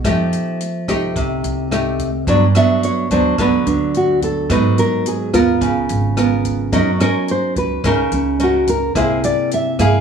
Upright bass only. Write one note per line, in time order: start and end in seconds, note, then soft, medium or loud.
0.05 0.31 F2 medium
0.88 1.14 C2 medium
1.16 1.42 C2 medium
1.44 2.23 C2 medium
2.27 2.53 G2 medium
3.11 3.37 D2 medium
3.38 3.64 D2 medium
3.66 4.46 D2 medium
4.50 4.76 G#2 medium
5.33 5.59 D#2 medium
5.61 5.87 C#2 medium
5.90 6.69 G#1 medium
6.73 6.99 F#2 medium
7.56 7.82 C#2 medium
7.84 8.10 C#2 medium
8.12 8.92 C#2 medium
8.95 9.21 C2 medium
9.79 10.01 G2 medium